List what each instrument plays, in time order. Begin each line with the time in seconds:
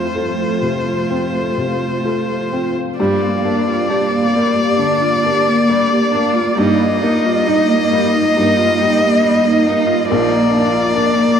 Already playing: felt piano F2 C4, cello A3, viola F4, violin C5
0.14 felt piano F4 A4, vibraphone A4
0.37 vibraphone A4
0.61 felt piano C3, vibraphone F4
0.86 vibraphone F5
1.10 felt piano C4, vibraphone F4
1.34 vibraphone A4
1.57 felt piano C3, vibraphone F5
1.82 vibraphone F4
2.05 felt piano F4 A4, vibraphone C5
2.29 vibraphone A4
2.53 felt piano C4, vibraphone F4
2.76 vibraphone F5
2.98 felt piano G2, viola G3, cello A#3, vibraphone G4, violin D5
3.21 viola A#3, vibraphone F5
3.45 felt piano A#3, viola D4, vibraphone D5
3.67 viola F4, vibraphone F5
3.89 viola D4, vibraphone G4, felt piano D5
4.12 viola A#3, vibraphone F5
4.35 viola G3, felt piano A#3, vibraphone A#4
4.56 viola A#3, vibraphone G4
4.78 felt piano D3, viola D4, vibraphone D5
5.02 viola F4
5.24 felt piano A#3, viola D4, vibraphone G4
5.48 viola A#3, vibraphone A#4
5.69 viola G3, felt piano D5
5.91 viola A#3, vibraphone G4
6.12 felt piano A#3, viola D4, vibraphone F5
6.34 viola F4
6.56 felt piano G2, viola G3, cello A#3, vibraphone D#4, violin D#5
6.78 viola A#3, vibraphone D#5
7.02 felt piano A#3, viola D#4, vibraphone A#4
7.24 viola F4, vibraphone D#5
7.47 vibraphone D#4, viola D#4, felt piano D#5
7.69 viola A#3, vibraphone D#5
7.91 viola G3, felt piano A#3, vibraphone G4
8.13 viola A#3, vibraphone D#4
8.35 felt piano G2, viola D#4, vibraphone A#4
8.57 viola F4
8.79 felt piano G3, viola D#4, vibraphone D#4
8.99 viola A#3, vibraphone G4
9.22 viola G3, felt piano D#5
9.45 viola A#3, vibraphone D#4
9.66 felt piano A#3, viola D#4, vibraphone D#5
9.86 viola F4
10.07 felt piano A#1, viola F3, cello A#3, vibraphone A#4, violin D5
10.30 viola A#3, vibraphone A#5
10.51 felt piano A#3, viola D4, vibraphone F5
10.72 viola F4, vibraphone A#5
10.94 viola D4, vibraphone A#4, felt piano D5
11.15 viola A#3, vibraphone A#5